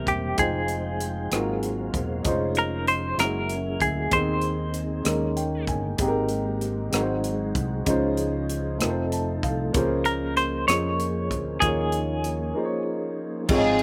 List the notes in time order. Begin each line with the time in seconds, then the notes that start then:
Already playing: C3 E3 G3 A#3 C4 E4 G4 A#4 C5 E5
0.07 E1 G4, kick, closed hi-hat
0.36 F1 F3 G#3 D#4 F4 G#4 C5 D#5 F5 G5, kick, closed hi-hat
0.68 closed hi-hat
1.00 closed hi-hat
1.31 G#1 G#2 F#3 G#3 A#3 C4 F4 F#4 G#4 A#4 C5 F5, cross-stick, closed hi-hat
1.63 closed hi-hat
1.94 E1, kick, closed hi-hat
2.23 F1 F3 G#3 C#4 D#4 F4, kick, closed hi-hat
2.27 C#4 F4 C5 D#5
2.55 A#4, closed hi-hat
2.87 C5, closed hi-hat
3.16 F#1 F#3 G#3 A#3 C#4 E4 F#4 A#4, cross-stick, closed hi-hat
3.20 G#3 F#4 E5
3.49 closed hi-hat
3.80 D2 G#4, kick, closed hi-hat
4.10 D#2 D#3 B3 C4 D#4 G#4 C5 D#5, kick, closed hi-hat
4.17 C4
4.41 closed hi-hat
4.74 closed hi-hat
5.03 D#2 D#3 G#3 A#3 C#4 D#4 A#4, cross-stick, closed hi-hat
5.07 C#4 A#4
5.37 G5, closed hi-hat
5.67 G1 G#5, kick, closed hi-hat
5.97 G#1 G#2 D#3 G#3 C4 D#4 G4 D#5, kick, closed hi-hat
6.01 G#4
6.08 A#4
6.29 closed hi-hat
6.61 closed hi-hat
6.90 G#1 G#2 F#3 G#3 C4 D#4 F#4 G#4 A#4, cross-stick, closed hi-hat
6.95 D#4
7.01 C5
7.24 closed hi-hat
7.55 C2, kick, closed hi-hat
7.85 C#2 C#3 F3 G#3 C#4 D#4 F4 G#4, kick, closed hi-hat
7.89 C5
8.17 closed hi-hat
8.50 closed hi-hat
8.78 F1 A3 C4 D#4 F4 A4 A#4, cross-stick, closed hi-hat
8.84 A4
8.89 C5
9.12 A5, closed hi-hat
9.43 C2 F5, kick, closed hi-hat
9.73 C#2 C#3 A#3 C#4 F4 G#4 A#4 C5, kick, closed hi-hat
10.05 A#4, closed hi-hat
10.37 C5, closed hi-hat
10.67 F2 A#3 C#4 F4 G#4 C#5 D#5, cross-stick, closed hi-hat
11.00 closed hi-hat
11.31 D2, kick, closed hi-hat
11.60 D#2 D#3 F3 A#3 D#4 F4 G#4 C#5, kick, closed hi-hat
11.64 C#5
11.92 closed hi-hat
12.24 closed hi-hat
12.54 A#3 D#4 F4 G#4 C5
12.65 C#5
13.47 G#1 G#2 F3 G#3 C4 D#4 F4 G#4 C#5, kick, crash
13.52 F4 G#4
13.58 D#5
13.79 ride